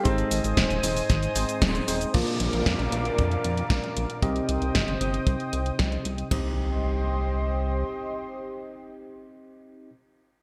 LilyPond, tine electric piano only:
\new Staff \with { instrumentName = "Tine electric piano" } { \time 4/4 \key c \minor \tempo 4 = 115 <aes, aes c' ees' c''>4. <aes, aes c' ees' c''>4 <aes, aes c' ees' c''>4 <aes c' ees' c''>8 | <bes, bes d' f' d''>4. <bes, bes d' f' d''>2~ <bes, bes d' f' d''>8 | <c c' ees' g' ees''>4. <c c' ees' g' ees''>2~ <c c' ees' g' ees''>8 | <c' ees' g' ees''>1~ |
<c' ees' g' ees''>1 | }